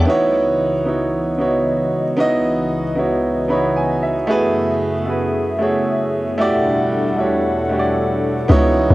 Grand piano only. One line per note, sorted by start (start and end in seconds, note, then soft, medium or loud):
0.00 0.21 E5 medium
0.06 0.71 B3 loud
0.06 0.71 D#4 medium
0.06 0.72 E4 medium
0.06 0.72 F#4 medium
0.06 0.73 C#5 loud
0.85 1.29 B3 medium
0.85 1.29 D#4 medium
0.85 1.30 E4 medium
0.85 1.30 F#4 medium
0.85 1.31 C#5 medium
1.38 2.03 B3 medium
1.38 2.03 D#4 medium
1.38 2.03 E4 medium
1.38 2.04 F#4 medium
1.38 2.04 C#5 medium
2.17 2.81 B3 loud
2.17 2.82 D#4 loud
2.17 2.82 E4 medium
2.17 2.83 F#4 loud
2.17 2.83 D#5 loud
2.96 3.39 B3 medium
2.96 3.40 D#4 medium
2.96 3.40 E4 medium
2.96 3.41 F#4 medium
2.96 3.41 C#5 medium
3.48 4.13 B3 medium
3.48 4.14 D#4 medium
3.48 4.14 E4 medium
3.48 4.14 F#4 medium
3.48 4.15 C#5 medium
3.48 3.74 B5 medium
3.76 4.01 G#5 medium
4.03 4.27 E5 medium
4.27 4.92 A3 loud
4.27 4.92 E4 medium
4.27 4.93 F#4 loud
4.27 4.93 G#4 loud
4.27 4.94 B4 loud
5.06 5.50 A3 medium
5.06 5.50 E4 medium
5.06 5.51 F#4 medium
5.06 5.51 G#4 medium
5.06 5.52 B4 medium
5.59 6.24 A3 medium
5.59 6.24 E4 medium
5.59 6.25 F#4 medium
5.59 6.25 G#4 medium
5.59 6.25 C#5 medium
6.38 7.03 A3 loud
6.38 7.03 E4 loud
6.38 7.03 F#4 loud
6.38 7.04 G4 loud
6.38 7.04 D5 loud
7.17 7.60 A3 medium
7.17 7.61 E4 medium
7.17 7.61 F#4 medium
7.17 7.62 G4 medium
7.17 7.62 C#5 medium
7.69 8.34 A3 medium
7.69 8.35 E4 medium
7.69 8.35 F#4 medium
7.69 8.35 G4 medium
7.69 7.79 C#5 medium
7.79 8.39 D5 medium
8.48 8.95 B3 loud
8.48 8.95 D#4 loud
8.48 8.95 E4 loud
8.48 8.95 F#4 loud
8.48 8.95 C#5 loud